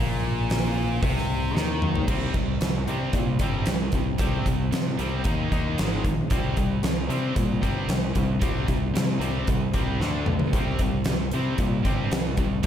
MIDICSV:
0, 0, Header, 1, 4, 480
1, 0, Start_track
1, 0, Key_signature, -3, "minor"
1, 0, Tempo, 528634
1, 1885, Time_signature, 4, 2, 24, 8
1, 11500, End_track
2, 0, Start_track
2, 0, Title_t, "Distorted electric guitar"
2, 0, Program_c, 0, 30
2, 0, Note_on_c, 0, 46, 108
2, 921, Note_off_c, 0, 46, 0
2, 931, Note_on_c, 0, 48, 110
2, 1401, Note_off_c, 0, 48, 0
2, 1418, Note_on_c, 0, 51, 99
2, 1884, Note_off_c, 0, 51, 0
2, 1895, Note_on_c, 0, 48, 73
2, 1899, Note_on_c, 0, 55, 91
2, 1908, Note_on_c, 0, 60, 101
2, 2116, Note_off_c, 0, 48, 0
2, 2118, Note_off_c, 0, 55, 0
2, 2122, Note_off_c, 0, 60, 0
2, 2134, Note_on_c, 0, 55, 77
2, 2135, Note_on_c, 0, 48, 67
2, 2346, Note_off_c, 0, 48, 0
2, 2346, Note_off_c, 0, 55, 0
2, 2378, Note_on_c, 0, 48, 61
2, 2384, Note_on_c, 0, 55, 77
2, 2588, Note_off_c, 0, 48, 0
2, 2590, Note_off_c, 0, 55, 0
2, 2616, Note_on_c, 0, 48, 81
2, 2624, Note_on_c, 0, 55, 82
2, 2628, Note_on_c, 0, 60, 85
2, 2836, Note_off_c, 0, 48, 0
2, 2840, Note_off_c, 0, 55, 0
2, 2842, Note_off_c, 0, 60, 0
2, 2865, Note_on_c, 0, 48, 70
2, 2872, Note_on_c, 0, 55, 74
2, 3071, Note_off_c, 0, 48, 0
2, 3075, Note_off_c, 0, 55, 0
2, 3100, Note_on_c, 0, 55, 75
2, 3101, Note_on_c, 0, 48, 79
2, 3112, Note_on_c, 0, 60, 88
2, 3318, Note_off_c, 0, 55, 0
2, 3319, Note_off_c, 0, 48, 0
2, 3325, Note_off_c, 0, 60, 0
2, 3354, Note_on_c, 0, 55, 75
2, 3356, Note_on_c, 0, 48, 64
2, 3556, Note_off_c, 0, 55, 0
2, 3557, Note_off_c, 0, 48, 0
2, 3577, Note_on_c, 0, 48, 69
2, 3579, Note_on_c, 0, 55, 70
2, 3788, Note_off_c, 0, 48, 0
2, 3789, Note_off_c, 0, 55, 0
2, 3802, Note_on_c, 0, 48, 98
2, 3816, Note_on_c, 0, 60, 96
2, 3817, Note_on_c, 0, 55, 93
2, 4030, Note_off_c, 0, 48, 0
2, 4037, Note_off_c, 0, 55, 0
2, 4037, Note_off_c, 0, 60, 0
2, 4055, Note_on_c, 0, 55, 68
2, 4056, Note_on_c, 0, 48, 65
2, 4267, Note_off_c, 0, 48, 0
2, 4267, Note_off_c, 0, 55, 0
2, 4279, Note_on_c, 0, 48, 62
2, 4288, Note_on_c, 0, 55, 76
2, 4499, Note_off_c, 0, 48, 0
2, 4503, Note_off_c, 0, 55, 0
2, 4517, Note_on_c, 0, 48, 88
2, 4532, Note_on_c, 0, 55, 84
2, 4534, Note_on_c, 0, 60, 98
2, 4744, Note_off_c, 0, 48, 0
2, 4747, Note_on_c, 0, 51, 97
2, 4755, Note_off_c, 0, 55, 0
2, 4756, Note_off_c, 0, 60, 0
2, 4763, Note_on_c, 0, 58, 88
2, 4763, Note_on_c, 0, 63, 112
2, 4972, Note_off_c, 0, 51, 0
2, 4974, Note_off_c, 0, 58, 0
2, 4978, Note_off_c, 0, 63, 0
2, 4983, Note_on_c, 0, 51, 81
2, 4985, Note_on_c, 0, 58, 81
2, 4989, Note_on_c, 0, 63, 91
2, 5221, Note_off_c, 0, 51, 0
2, 5221, Note_off_c, 0, 58, 0
2, 5224, Note_off_c, 0, 63, 0
2, 5231, Note_on_c, 0, 44, 82
2, 5240, Note_on_c, 0, 51, 88
2, 5245, Note_on_c, 0, 56, 87
2, 5465, Note_off_c, 0, 44, 0
2, 5466, Note_off_c, 0, 51, 0
2, 5472, Note_off_c, 0, 56, 0
2, 5477, Note_on_c, 0, 51, 73
2, 5478, Note_on_c, 0, 44, 67
2, 5698, Note_off_c, 0, 44, 0
2, 5698, Note_off_c, 0, 51, 0
2, 5719, Note_on_c, 0, 48, 92
2, 5720, Note_on_c, 0, 60, 96
2, 5724, Note_on_c, 0, 55, 89
2, 5949, Note_off_c, 0, 48, 0
2, 5949, Note_off_c, 0, 60, 0
2, 5951, Note_off_c, 0, 55, 0
2, 5968, Note_on_c, 0, 48, 64
2, 5969, Note_on_c, 0, 55, 72
2, 6184, Note_off_c, 0, 48, 0
2, 6184, Note_off_c, 0, 55, 0
2, 6209, Note_on_c, 0, 48, 60
2, 6210, Note_on_c, 0, 55, 69
2, 6424, Note_off_c, 0, 48, 0
2, 6424, Note_off_c, 0, 55, 0
2, 6439, Note_on_c, 0, 48, 85
2, 6444, Note_on_c, 0, 55, 90
2, 6448, Note_on_c, 0, 60, 86
2, 6656, Note_off_c, 0, 55, 0
2, 6657, Note_off_c, 0, 48, 0
2, 6667, Note_on_c, 0, 55, 92
2, 6668, Note_on_c, 0, 48, 72
2, 6673, Note_off_c, 0, 60, 0
2, 6893, Note_off_c, 0, 55, 0
2, 6894, Note_off_c, 0, 48, 0
2, 6909, Note_on_c, 0, 48, 82
2, 6918, Note_on_c, 0, 55, 95
2, 6922, Note_on_c, 0, 60, 91
2, 7140, Note_off_c, 0, 48, 0
2, 7148, Note_off_c, 0, 55, 0
2, 7150, Note_off_c, 0, 60, 0
2, 7151, Note_on_c, 0, 48, 67
2, 7163, Note_on_c, 0, 55, 71
2, 7375, Note_off_c, 0, 48, 0
2, 7381, Note_off_c, 0, 55, 0
2, 7387, Note_on_c, 0, 48, 59
2, 7397, Note_on_c, 0, 55, 60
2, 7611, Note_off_c, 0, 48, 0
2, 7612, Note_off_c, 0, 55, 0
2, 7622, Note_on_c, 0, 48, 85
2, 7623, Note_on_c, 0, 55, 89
2, 7638, Note_on_c, 0, 60, 94
2, 7859, Note_off_c, 0, 55, 0
2, 7860, Note_off_c, 0, 48, 0
2, 7868, Note_off_c, 0, 60, 0
2, 7870, Note_on_c, 0, 48, 61
2, 7870, Note_on_c, 0, 55, 78
2, 8094, Note_off_c, 0, 48, 0
2, 8094, Note_off_c, 0, 55, 0
2, 8115, Note_on_c, 0, 48, 77
2, 8120, Note_on_c, 0, 55, 84
2, 8333, Note_off_c, 0, 48, 0
2, 8335, Note_off_c, 0, 55, 0
2, 8344, Note_on_c, 0, 48, 93
2, 8346, Note_on_c, 0, 55, 82
2, 8357, Note_on_c, 0, 60, 94
2, 8581, Note_off_c, 0, 48, 0
2, 8582, Note_off_c, 0, 55, 0
2, 8587, Note_off_c, 0, 60, 0
2, 8594, Note_on_c, 0, 48, 73
2, 8599, Note_on_c, 0, 55, 82
2, 8816, Note_off_c, 0, 48, 0
2, 8819, Note_off_c, 0, 55, 0
2, 8841, Note_on_c, 0, 48, 79
2, 8850, Note_on_c, 0, 55, 84
2, 8850, Note_on_c, 0, 60, 92
2, 9069, Note_off_c, 0, 48, 0
2, 9073, Note_off_c, 0, 55, 0
2, 9074, Note_off_c, 0, 60, 0
2, 9084, Note_on_c, 0, 50, 91
2, 9086, Note_on_c, 0, 57, 82
2, 9092, Note_on_c, 0, 62, 83
2, 9310, Note_off_c, 0, 50, 0
2, 9311, Note_off_c, 0, 57, 0
2, 9315, Note_off_c, 0, 62, 0
2, 9325, Note_on_c, 0, 50, 61
2, 9328, Note_on_c, 0, 57, 67
2, 9541, Note_off_c, 0, 50, 0
2, 9543, Note_off_c, 0, 57, 0
2, 9577, Note_on_c, 0, 48, 87
2, 9585, Note_on_c, 0, 55, 87
2, 9594, Note_on_c, 0, 60, 98
2, 9796, Note_off_c, 0, 48, 0
2, 9798, Note_off_c, 0, 55, 0
2, 9805, Note_off_c, 0, 60, 0
2, 9807, Note_on_c, 0, 48, 57
2, 9809, Note_on_c, 0, 55, 72
2, 10022, Note_off_c, 0, 48, 0
2, 10023, Note_off_c, 0, 55, 0
2, 10047, Note_on_c, 0, 48, 59
2, 10053, Note_on_c, 0, 55, 75
2, 10262, Note_off_c, 0, 48, 0
2, 10265, Note_off_c, 0, 55, 0
2, 10290, Note_on_c, 0, 48, 84
2, 10291, Note_on_c, 0, 55, 86
2, 10300, Note_on_c, 0, 60, 102
2, 10512, Note_off_c, 0, 48, 0
2, 10513, Note_off_c, 0, 55, 0
2, 10518, Note_off_c, 0, 60, 0
2, 10524, Note_on_c, 0, 48, 76
2, 10530, Note_on_c, 0, 55, 83
2, 10732, Note_off_c, 0, 48, 0
2, 10743, Note_off_c, 0, 55, 0
2, 10743, Note_on_c, 0, 48, 84
2, 10753, Note_on_c, 0, 55, 88
2, 10761, Note_on_c, 0, 60, 82
2, 10979, Note_off_c, 0, 48, 0
2, 10984, Note_off_c, 0, 55, 0
2, 10988, Note_off_c, 0, 60, 0
2, 10990, Note_on_c, 0, 48, 71
2, 10994, Note_on_c, 0, 55, 72
2, 11213, Note_off_c, 0, 48, 0
2, 11215, Note_off_c, 0, 55, 0
2, 11245, Note_on_c, 0, 55, 69
2, 11247, Note_on_c, 0, 48, 67
2, 11455, Note_off_c, 0, 48, 0
2, 11460, Note_off_c, 0, 55, 0
2, 11466, Note_on_c, 0, 48, 86
2, 11472, Note_on_c, 0, 55, 91
2, 11500, Note_off_c, 0, 48, 0
2, 11500, Note_off_c, 0, 55, 0
2, 11500, End_track
3, 0, Start_track
3, 0, Title_t, "Fingered electric bass"
3, 0, Program_c, 1, 33
3, 0, Note_on_c, 1, 34, 92
3, 891, Note_off_c, 1, 34, 0
3, 935, Note_on_c, 1, 36, 90
3, 1377, Note_off_c, 1, 36, 0
3, 1404, Note_on_c, 1, 39, 87
3, 1851, Note_off_c, 1, 39, 0
3, 1890, Note_on_c, 1, 36, 88
3, 2108, Note_off_c, 1, 36, 0
3, 2127, Note_on_c, 1, 36, 74
3, 2346, Note_off_c, 1, 36, 0
3, 2374, Note_on_c, 1, 36, 82
3, 2590, Note_off_c, 1, 36, 0
3, 2619, Note_on_c, 1, 48, 75
3, 2833, Note_off_c, 1, 48, 0
3, 2844, Note_on_c, 1, 46, 73
3, 3065, Note_off_c, 1, 46, 0
3, 3088, Note_on_c, 1, 31, 84
3, 3307, Note_off_c, 1, 31, 0
3, 3333, Note_on_c, 1, 36, 87
3, 3550, Note_off_c, 1, 36, 0
3, 3568, Note_on_c, 1, 36, 81
3, 3787, Note_off_c, 1, 36, 0
3, 3812, Note_on_c, 1, 36, 77
3, 4030, Note_off_c, 1, 36, 0
3, 4050, Note_on_c, 1, 36, 86
3, 4269, Note_off_c, 1, 36, 0
3, 4290, Note_on_c, 1, 48, 78
3, 4509, Note_off_c, 1, 48, 0
3, 4529, Note_on_c, 1, 36, 73
3, 4748, Note_off_c, 1, 36, 0
3, 4768, Note_on_c, 1, 39, 80
3, 4988, Note_off_c, 1, 39, 0
3, 5009, Note_on_c, 1, 39, 80
3, 5228, Note_off_c, 1, 39, 0
3, 5259, Note_on_c, 1, 32, 80
3, 5474, Note_off_c, 1, 32, 0
3, 5487, Note_on_c, 1, 34, 80
3, 5708, Note_off_c, 1, 34, 0
3, 5728, Note_on_c, 1, 36, 82
3, 5948, Note_off_c, 1, 36, 0
3, 5971, Note_on_c, 1, 36, 77
3, 6190, Note_off_c, 1, 36, 0
3, 6203, Note_on_c, 1, 36, 84
3, 6425, Note_off_c, 1, 36, 0
3, 6441, Note_on_c, 1, 48, 77
3, 6664, Note_off_c, 1, 48, 0
3, 6688, Note_on_c, 1, 46, 77
3, 6908, Note_off_c, 1, 46, 0
3, 6928, Note_on_c, 1, 31, 78
3, 7148, Note_off_c, 1, 31, 0
3, 7157, Note_on_c, 1, 36, 87
3, 7382, Note_off_c, 1, 36, 0
3, 7409, Note_on_c, 1, 36, 88
3, 7628, Note_off_c, 1, 36, 0
3, 7644, Note_on_c, 1, 36, 95
3, 7865, Note_off_c, 1, 36, 0
3, 7883, Note_on_c, 1, 36, 80
3, 8105, Note_off_c, 1, 36, 0
3, 8114, Note_on_c, 1, 48, 81
3, 8340, Note_off_c, 1, 48, 0
3, 8350, Note_on_c, 1, 36, 81
3, 8578, Note_off_c, 1, 36, 0
3, 8609, Note_on_c, 1, 36, 87
3, 8828, Note_off_c, 1, 36, 0
3, 8843, Note_on_c, 1, 36, 81
3, 9065, Note_off_c, 1, 36, 0
3, 9082, Note_on_c, 1, 38, 86
3, 9304, Note_off_c, 1, 38, 0
3, 9321, Note_on_c, 1, 35, 80
3, 9543, Note_off_c, 1, 35, 0
3, 9564, Note_on_c, 1, 36, 91
3, 9785, Note_off_c, 1, 36, 0
3, 9804, Note_on_c, 1, 36, 84
3, 10025, Note_off_c, 1, 36, 0
3, 10052, Note_on_c, 1, 36, 77
3, 10269, Note_off_c, 1, 36, 0
3, 10294, Note_on_c, 1, 48, 74
3, 10510, Note_off_c, 1, 48, 0
3, 10519, Note_on_c, 1, 46, 89
3, 10741, Note_off_c, 1, 46, 0
3, 10756, Note_on_c, 1, 31, 74
3, 10980, Note_off_c, 1, 31, 0
3, 11003, Note_on_c, 1, 36, 83
3, 11223, Note_off_c, 1, 36, 0
3, 11238, Note_on_c, 1, 36, 84
3, 11461, Note_off_c, 1, 36, 0
3, 11500, End_track
4, 0, Start_track
4, 0, Title_t, "Drums"
4, 453, Note_on_c, 9, 46, 63
4, 464, Note_on_c, 9, 38, 102
4, 544, Note_off_c, 9, 46, 0
4, 555, Note_off_c, 9, 38, 0
4, 932, Note_on_c, 9, 36, 102
4, 937, Note_on_c, 9, 46, 62
4, 1023, Note_off_c, 9, 36, 0
4, 1028, Note_off_c, 9, 46, 0
4, 1070, Note_on_c, 9, 38, 29
4, 1160, Note_off_c, 9, 38, 0
4, 1423, Note_on_c, 9, 38, 69
4, 1514, Note_off_c, 9, 38, 0
4, 1653, Note_on_c, 9, 45, 75
4, 1744, Note_off_c, 9, 45, 0
4, 1775, Note_on_c, 9, 43, 86
4, 1865, Note_off_c, 9, 43, 0
4, 1887, Note_on_c, 9, 49, 107
4, 1889, Note_on_c, 9, 36, 112
4, 1978, Note_off_c, 9, 49, 0
4, 1980, Note_off_c, 9, 36, 0
4, 2125, Note_on_c, 9, 42, 63
4, 2128, Note_on_c, 9, 36, 80
4, 2216, Note_off_c, 9, 42, 0
4, 2218, Note_off_c, 9, 36, 0
4, 2367, Note_on_c, 9, 42, 86
4, 2378, Note_on_c, 9, 38, 102
4, 2458, Note_off_c, 9, 42, 0
4, 2469, Note_off_c, 9, 38, 0
4, 2611, Note_on_c, 9, 42, 54
4, 2702, Note_off_c, 9, 42, 0
4, 2842, Note_on_c, 9, 42, 84
4, 2846, Note_on_c, 9, 36, 92
4, 2933, Note_off_c, 9, 42, 0
4, 2936, Note_off_c, 9, 36, 0
4, 3079, Note_on_c, 9, 42, 66
4, 3084, Note_on_c, 9, 36, 87
4, 3170, Note_off_c, 9, 42, 0
4, 3175, Note_off_c, 9, 36, 0
4, 3320, Note_on_c, 9, 42, 96
4, 3331, Note_on_c, 9, 38, 112
4, 3411, Note_off_c, 9, 42, 0
4, 3422, Note_off_c, 9, 38, 0
4, 3557, Note_on_c, 9, 42, 62
4, 3567, Note_on_c, 9, 36, 78
4, 3648, Note_off_c, 9, 42, 0
4, 3657, Note_off_c, 9, 36, 0
4, 3798, Note_on_c, 9, 42, 97
4, 3808, Note_on_c, 9, 36, 107
4, 3889, Note_off_c, 9, 42, 0
4, 3899, Note_off_c, 9, 36, 0
4, 4049, Note_on_c, 9, 36, 74
4, 4050, Note_on_c, 9, 42, 71
4, 4140, Note_off_c, 9, 36, 0
4, 4140, Note_off_c, 9, 42, 0
4, 4290, Note_on_c, 9, 42, 86
4, 4301, Note_on_c, 9, 38, 104
4, 4381, Note_off_c, 9, 42, 0
4, 4392, Note_off_c, 9, 38, 0
4, 4529, Note_on_c, 9, 42, 66
4, 4620, Note_off_c, 9, 42, 0
4, 4759, Note_on_c, 9, 42, 85
4, 4770, Note_on_c, 9, 36, 108
4, 4850, Note_off_c, 9, 42, 0
4, 4860, Note_off_c, 9, 36, 0
4, 5011, Note_on_c, 9, 36, 85
4, 5011, Note_on_c, 9, 42, 59
4, 5102, Note_off_c, 9, 36, 0
4, 5102, Note_off_c, 9, 42, 0
4, 5249, Note_on_c, 9, 42, 96
4, 5260, Note_on_c, 9, 38, 118
4, 5340, Note_off_c, 9, 42, 0
4, 5351, Note_off_c, 9, 38, 0
4, 5489, Note_on_c, 9, 36, 78
4, 5491, Note_on_c, 9, 42, 60
4, 5580, Note_off_c, 9, 36, 0
4, 5582, Note_off_c, 9, 42, 0
4, 5722, Note_on_c, 9, 42, 93
4, 5728, Note_on_c, 9, 36, 111
4, 5813, Note_off_c, 9, 42, 0
4, 5819, Note_off_c, 9, 36, 0
4, 5962, Note_on_c, 9, 42, 65
4, 5968, Note_on_c, 9, 36, 74
4, 6053, Note_off_c, 9, 42, 0
4, 6058, Note_off_c, 9, 36, 0
4, 6202, Note_on_c, 9, 42, 83
4, 6213, Note_on_c, 9, 38, 100
4, 6293, Note_off_c, 9, 42, 0
4, 6304, Note_off_c, 9, 38, 0
4, 6448, Note_on_c, 9, 42, 59
4, 6539, Note_off_c, 9, 42, 0
4, 6684, Note_on_c, 9, 42, 90
4, 6686, Note_on_c, 9, 36, 98
4, 6775, Note_off_c, 9, 42, 0
4, 6777, Note_off_c, 9, 36, 0
4, 6927, Note_on_c, 9, 36, 79
4, 6930, Note_on_c, 9, 42, 62
4, 7018, Note_off_c, 9, 36, 0
4, 7021, Note_off_c, 9, 42, 0
4, 7161, Note_on_c, 9, 42, 81
4, 7172, Note_on_c, 9, 38, 109
4, 7252, Note_off_c, 9, 42, 0
4, 7263, Note_off_c, 9, 38, 0
4, 7401, Note_on_c, 9, 42, 54
4, 7406, Note_on_c, 9, 36, 73
4, 7492, Note_off_c, 9, 42, 0
4, 7497, Note_off_c, 9, 36, 0
4, 7640, Note_on_c, 9, 42, 92
4, 7644, Note_on_c, 9, 36, 112
4, 7731, Note_off_c, 9, 42, 0
4, 7735, Note_off_c, 9, 36, 0
4, 7882, Note_on_c, 9, 42, 64
4, 7885, Note_on_c, 9, 36, 77
4, 7973, Note_off_c, 9, 42, 0
4, 7976, Note_off_c, 9, 36, 0
4, 8131, Note_on_c, 9, 42, 98
4, 8142, Note_on_c, 9, 38, 110
4, 8222, Note_off_c, 9, 42, 0
4, 8233, Note_off_c, 9, 38, 0
4, 8366, Note_on_c, 9, 42, 61
4, 8457, Note_off_c, 9, 42, 0
4, 8603, Note_on_c, 9, 42, 89
4, 8608, Note_on_c, 9, 36, 103
4, 8693, Note_off_c, 9, 42, 0
4, 8698, Note_off_c, 9, 36, 0
4, 8839, Note_on_c, 9, 42, 73
4, 8845, Note_on_c, 9, 36, 79
4, 8930, Note_off_c, 9, 42, 0
4, 8936, Note_off_c, 9, 36, 0
4, 9092, Note_on_c, 9, 38, 59
4, 9183, Note_off_c, 9, 38, 0
4, 9318, Note_on_c, 9, 45, 71
4, 9409, Note_off_c, 9, 45, 0
4, 9439, Note_on_c, 9, 43, 78
4, 9530, Note_off_c, 9, 43, 0
4, 9562, Note_on_c, 9, 42, 91
4, 9563, Note_on_c, 9, 36, 106
4, 9653, Note_off_c, 9, 42, 0
4, 9654, Note_off_c, 9, 36, 0
4, 9795, Note_on_c, 9, 42, 61
4, 9801, Note_on_c, 9, 36, 80
4, 9885, Note_off_c, 9, 42, 0
4, 9892, Note_off_c, 9, 36, 0
4, 10028, Note_on_c, 9, 42, 87
4, 10039, Note_on_c, 9, 38, 99
4, 10119, Note_off_c, 9, 42, 0
4, 10130, Note_off_c, 9, 38, 0
4, 10274, Note_on_c, 9, 42, 60
4, 10364, Note_off_c, 9, 42, 0
4, 10515, Note_on_c, 9, 42, 81
4, 10521, Note_on_c, 9, 36, 100
4, 10606, Note_off_c, 9, 42, 0
4, 10612, Note_off_c, 9, 36, 0
4, 10758, Note_on_c, 9, 42, 63
4, 10760, Note_on_c, 9, 36, 87
4, 10849, Note_off_c, 9, 42, 0
4, 10850, Note_off_c, 9, 36, 0
4, 11000, Note_on_c, 9, 42, 90
4, 11011, Note_on_c, 9, 38, 113
4, 11091, Note_off_c, 9, 42, 0
4, 11102, Note_off_c, 9, 38, 0
4, 11232, Note_on_c, 9, 42, 57
4, 11237, Note_on_c, 9, 36, 86
4, 11323, Note_off_c, 9, 42, 0
4, 11328, Note_off_c, 9, 36, 0
4, 11470, Note_on_c, 9, 42, 96
4, 11500, Note_off_c, 9, 42, 0
4, 11500, End_track
0, 0, End_of_file